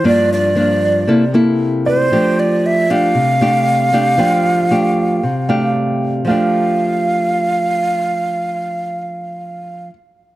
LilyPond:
<<
  \new Staff \with { instrumentName = "Grand piano" } { \time 4/4 \key f \major \tempo 4 = 116 r2. r8 d''8~ | d''8 r2. r8 | g''4. r4 f''4. | f''1~ |
f''1 | }
  \new Staff \with { instrumentName = "Flute" } { \time 4/4 \key f \major d''8 d''2 r4 c''8~ | c''8 d''8 e''8 f''2~ f''8~ | f''2. r4 | f''1~ |
f''1 | }
  \new Staff \with { instrumentName = "Nylon-string guitar" } { \time 4/4 \key f \major << { <f bes d'>4 <f bes d'>4 <bes e' a'>8 <bes e' a'>4. | <a d' g'>4. <a d' g'>4 <a d' g'>4 <a d' g'>8 | <a d' g'>4 <a d' g'>4 r8 <a d' g'>4. | <f a d' g'>1~ |
<f a d' g'>1 | } \\ { g,2 c2 | f2 c2 | f2 c2 | r1 |
r1 | } >> }
>>